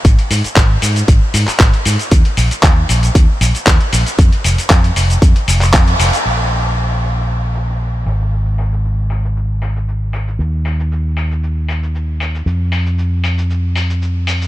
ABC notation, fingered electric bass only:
X:1
M:4/4
L:1/8
Q:"Swing 16ths" 1/4=116
K:Ebmix
V:1 name="Fingered electric bass" clef=bass
A,,, A,, A,,, A,, A,,, A,, A,,, A,, | E,, B,,, E,, B,,, E,, B,,, E,, B,,, | F,, F,,, F,, F,,, F,, F,,, F,, F,,, | B,,,6- B,,, A,,,- |
A,,,8 | E,,8 | F,,8 |]